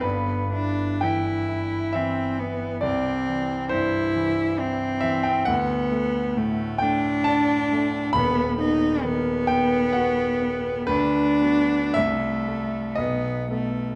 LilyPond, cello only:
\new Staff \with { instrumentName = "Cello" } { \time 3/4 \key b \phrygian \tempo 4 = 67 b8 d'8 e'4 c'8 b8 | c'4 e'4 c'4 | b4 a8 d'4. | b8 dis'8 b2 |
d'4 a4 b8 a8 | }